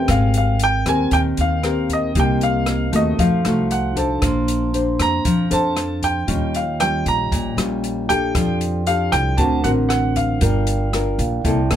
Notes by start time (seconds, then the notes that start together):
Already playing: C4 C#4 G4 A4 A#4 B4 G5
0.05 G#1 G#3 C4 A#4, kick, cross-stick, closed hi-hat
0.10 F5 G5
0.34 F5, closed hi-hat
0.59 closed hi-hat
0.64 G5
0.86 D#2 C4 G4 A#4 G#5, kick, cross-stick, closed hi-hat
1.11 D#2 D#3 G5, kick, closed hi-hat
1.37 D#2 F5, closed hi-hat
1.63 C4 G4 A#4, cross-stick, closed hi-hat
1.89 D#5, kick, closed hi-hat
2.11 C4 G4
2.15 C2 C3 A#3 D#4 G4 A#4 D#5, kick, closed hi-hat
2.20 G5
2.41 F5, closed hi-hat
2.66 cross-stick, closed hi-hat
2.92 D#2 A3 D#4 F#4 D#5, kick, closed hi-hat
3.15 D#4 F#4
3.19 F2 F3 A4 F5, kick, closed hi-hat
3.45 C2 A3 D#4 F#4, cross-stick, closed hi-hat
3.71 F#5, closed hi-hat
3.96 D4 A4 C5 A5, kick, closed hi-hat
4.19 A#1 A#3 D4 C5, kick, cross-stick, closed hi-hat
4.25 C6
4.48 closed hi-hat
4.74 D4 C5, closed hi-hat
4.99 F2 A#5, kick, cross-stick, closed hi-hat
5.25 F2 F3, kick, closed hi-hat
5.50 F2 D4 A4 C5 A5, closed hi-hat
5.77 cross-stick, closed hi-hat
6.02 G5, kick, closed hi-hat
6.26 D#2 D#3 G3 C#4 F4 C#5 D#5, kick, closed hi-hat
6.31 G5
6.54 F5, closed hi-hat
6.80 G3 C#4 F4 G5, cross-stick, closed hi-hat
7.06 A#1 A#5, kick, closed hi-hat
7.32 A#1 A#2, kick, closed hi-hat
7.57 A#1 G3 C#4 F4, cross-stick, closed hi-hat
7.84 closed hi-hat
8.09 D4 G4 A4 G5, kick, closed hi-hat
8.31 F2 F3 F4 A4 D5, kick, cross-stick, closed hi-hat
8.38 G5
8.61 closed hi-hat
8.87 D4 G4 A4 F5, closed hi-hat
9.12 C2 G5, kick, cross-stick, closed hi-hat
9.35 D2 D3 C4 D4 F#4 A#4 C5 A5, kick, closed hi-hat
9.39 A#4 F#5
9.64 A1 C4 F#4 A#4 F#5, closed hi-hat
9.89 F#5, cross-stick, closed hi-hat
10.16 F5, kick, closed hi-hat
10.38 G1 G3 D4 F4 A#4 D5, kick, closed hi-hat
10.44 G5
10.67 closed hi-hat
10.93 D4 F4 A#4, cross-stick, closed hi-hat
11.19 A#1 F5, kick, closed hi-hat
11.42 C2 C3 A#3 E4 A4 G5, kick, closed hi-hat
11.46 D5 A5
11.70 G2 A#3 E4 A4, cross-stick, closed hi-hat